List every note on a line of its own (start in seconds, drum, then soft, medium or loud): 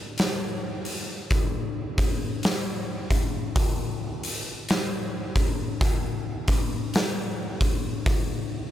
0.18 snare loud
0.18 open hi-hat medium
0.85 open hi-hat medium
1.31 kick loud
1.31 open hi-hat medium
1.98 kick medium
1.98 open hi-hat medium
2.43 snare loud
2.43 open hi-hat medium
3.11 kick medium
3.11 open hi-hat medium
3.56 kick loud
3.56 open hi-hat medium
4.23 open hi-hat medium
4.69 snare loud
4.69 open hi-hat medium
5.36 kick medium
5.36 open hi-hat medium
5.81 kick loud
5.81 open hi-hat medium
6.48 kick medium
6.48 open hi-hat medium
6.94 snare loud
6.94 open hi-hat medium
7.61 kick medium
7.61 open hi-hat medium
8.06 kick loud
8.06 open hi-hat medium